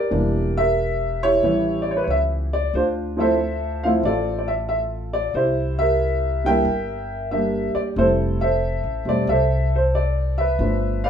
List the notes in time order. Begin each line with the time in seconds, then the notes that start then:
Already playing: G4 A#4 B4 D5
0.11 E1 E3 G3 A#3 D4
0.57 G4 A#4 E5
1.23 E4 G4 C#5
1.43 A1 E3 G3 B3 E4
1.82 D5
1.91 C#5
1.97 B4
2.04 C#2 C#5
2.10 E5
2.53 D5
2.74 D2 D4 F4 C5
3.17 F3 A3 C4 E4 E5
3.21 A4 C5
3.84 F3 A3 C4 E4 F5
4.03 A1 F4 A4 D5
4.39 D5
4.48 E5
4.69 E5
5.13 D5
5.34 C2 E4 G4 C5
5.79 G4 A#4 E5
6.44 G3 A#3 D4 E4 A#4 G5
6.48 E5
6.65 G1
7.31 G3 A#3 D4 G4 E5
7.75 D5, muted upright bass stroke
7.96 F1 G3 A3 C4 E4 A4 C5
8.41 A4 C5 E5
8.83 A1
9.05 E1 G3 A3 C4 G4 D5
9.27 C2 A4 C5 E5
9.76 C5
9.95 D5
10.38 B4 E5
10.59 G1 F3 A3 B3 D4
11.04 B4 D5 F5